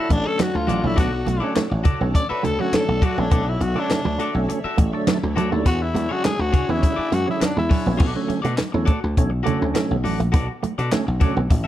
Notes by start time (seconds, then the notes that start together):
Already playing: E4 A4 C#5 D5 F#5
0.09 A1 A3 D4, muted clean electric guitar stroke, kick, closed hi-hat, muted conga
0.24 D3 F#3 A3 C#4 A4, muted clean electric guitar stroke
0.38 F#3 F#4, muted clean electric guitar stroke, snare, clap, closed hi-hat, high conga
0.55 D2 F4
0.67 A1 F#4 A4 D5, muted clean electric guitar stroke, closed hi-hat, high conga
0.83 A#1 D3 F#3 A3 D4 E4, muted clean electric guitar stroke
0.96 B1 B3 F#4 A4 D5, kick, closed hi-hat, muted conga
1.13 muted clean electric guitar stroke
1.25 B1 A3, muted clean electric guitar stroke, closed hi-hat, muted conga
1.40 D3 F#3 A3 C#4 F#4 A4 D5, muted clean electric guitar stroke
1.55 A3, muted clean electric guitar stroke, snare, clap, closed hi-hat, high conga
1.70 A1, muted clean electric guitar stroke
1.84 F#4 A4 D5, muted clean electric guitar stroke, kick, closed hi-hat, low conga
2.00 B1 D3 F#3 A3 B3 C#4, muted clean electric guitar stroke
2.14 D5 E5, muted clean electric guitar stroke, kick, closed hi-hat, muted conga
2.29 F#4 A4 B4 E5, muted slap bass stroke
2.43 D2 A3 A4, muted clean electric guitar stroke, closed hi-hat, low conga
2.59 D3 F#3 A3 C#4 F#4, muted clean electric guitar stroke
2.72 A4, muted slap bass stroke, snare, clap, closed hi-hat, high conga
2.88 B1 A3, muted clean electric guitar stroke
3.02 F#4 A4 D5, muted clean electric guitar stroke, kick, closed hi-hat, high conga
3.18 A#1 D3 F#3 A3 B3 C#4 D4, muted clean electric guitar stroke
3.31 B1 B3 F#4 A4 D5, kick, closed hi-hat, muted conga
3.47 E4, muted clean electric guitar stroke
3.60 B1 F#4, muted clean electric guitar stroke, closed hi-hat, muted conga
3.75 D3 F#3 A3 C#4 F#4 A4 D5
3.80 D4
3.90 muted clean electric guitar stroke, snare, clap, closed hi-hat, high conga
4.05 D2 F#3, muted clean electric guitar stroke
4.18 A3 F#4 A4 D5, closed hi-hat
4.34 B1 D3 F#3 A3 C#4, muted clean electric guitar stroke
4.49 muted clean electric guitar stroke, closed hi-hat, muted conga
4.64 F#4 A4 E5, muted slap bass stroke
4.78 A1 A3, muted clean electric guitar stroke, kick, closed hi-hat
4.93 D3 F#3 A3 D4, muted clean electric guitar stroke
5.07 F#3, muted clean electric guitar stroke, snare, clap, closed hi-hat, high conga
5.23 D2
5.36 D2 F#4 A4 D5, muted clean electric guitar stroke, closed hi-hat, high conga
5.51 D#2 D3 F#3 A3 D4, muted clean electric guitar stroke
5.65 E2 B3 D4 F#4 G#4 C#5 D5 F#5, kick, closed hi-hat, muted conga
5.80 E4, muted clean electric guitar stroke
5.94 E2 G#3, muted clean electric guitar stroke, closed hi-hat, muted conga
6.09 D3 F#3 G#3 C#4 D4 F#4 G#4 C#5, muted clean electric guitar stroke
6.24 G#3 G#4, muted clean electric guitar stroke, snare, clap, closed hi-hat, high conga
6.39 D2 F#4, muted clean electric guitar stroke
6.52 D4 G#4 C#5, muted clean electric guitar stroke, kick, closed hi-hat, low conga
6.68 E2 D3 F#3 G#3 B3 C#4 E4, muted clean electric guitar stroke
6.82 muted clean electric guitar stroke, kick, closed hi-hat, muted conga
6.96 D4 G#4 D5, muted slap bass stroke
7.12 F#2 G#3 F#4, closed hi-hat
7.26 D3 F#3 G#3 C#4, muted clean electric guitar stroke
7.31 E4
7.40 muted clean electric guitar stroke, muted slap bass stroke, snare, clap, closed hi-hat, high conga
7.45 D4
7.57 E2 G#3 E4
7.69 D4 G#4 C#5, muted clean electric guitar stroke, kick, open hi-hat, high conga
7.86 A#1 D3 F#3 G#3 B3 C#4, muted clean electric guitar stroke
7.97 B1 A3 B3 C#4 F#4 A4 D5, kick, crash, muted conga
8.14 D3 F#3 A3 C#4, muted clean electric guitar stroke
8.28 muted clean electric guitar stroke, muted slap bass stroke, closed hi-hat, muted conga
8.42 B2 A3 F#4 A4 D5, closed hi-hat
8.56 muted clean electric guitar stroke, snare, clap, closed hi-hat
8.60 high conga
8.72 E2 D3 F#3 A3 C#4, muted clean electric guitar stroke
8.85 A3 F#4 A4 D5, kick, closed hi-hat
9.01 D2, muted clean electric guitar stroke
9.17 B1 D3 F#3 A3 C#4, kick, closed hi-hat, muted conga
9.30 muted clean electric guitar stroke
9.43 D3 F#3 A3 C#4 F#4 A4 D5, closed hi-hat
9.47 muted conga, low conga
9.60 D2, muted clean electric guitar stroke
9.74 F#3, muted clean electric guitar stroke, snare, clap, closed hi-hat, high conga
9.91 B1
10.04 A1 F#4 A4 D5, muted clean electric guitar stroke, open hi-hat, high conga
10.20 A#1 A3, closed hi-hat
10.32 B1 B3 F#4 A4 D5, kick, closed hi-hat, muted conga
10.48 muted clean electric guitar stroke
10.63 A3, muted clean electric guitar stroke, muted slap bass stroke, closed hi-hat, muted conga
10.78 B2 F#4 A4 D5, muted clean electric guitar stroke, closed hi-hat
10.92 D3 F#3 A3 C#4, muted clean electric guitar stroke, snare, clap, closed hi-hat, high conga
11.07 B1, muted clean electric guitar stroke
11.20 D3 F#3 A3 C#4 F#4 A4 D5, muted clean electric guitar stroke, kick, closed hi-hat, low conga
11.36 B1 B3, muted clean electric guitar stroke
11.50 A1, muted clean electric guitar stroke, kick, closed hi-hat, muted conga
11.64 E5